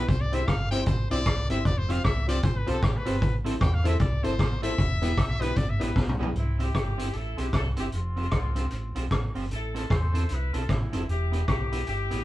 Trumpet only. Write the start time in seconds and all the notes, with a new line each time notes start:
0.08 C5
0.21 D5
0.35 E5
0.47 F5
0.71 G5
0.86 C5
1.11 D5
1.50 E5
1.66 D5
1.78 C5
1.92 F5
2.05 E5
2.29 D5
2.44 C5
2.57 B4
2.70 A4
2.83 G4
2.97 B4
3.62 G5
3.74 F5
3.88 E5
4.00 D5
4.24 C5
4.63 E5
5.41 B4
5.57 D5
5.69 E5
5.83 B4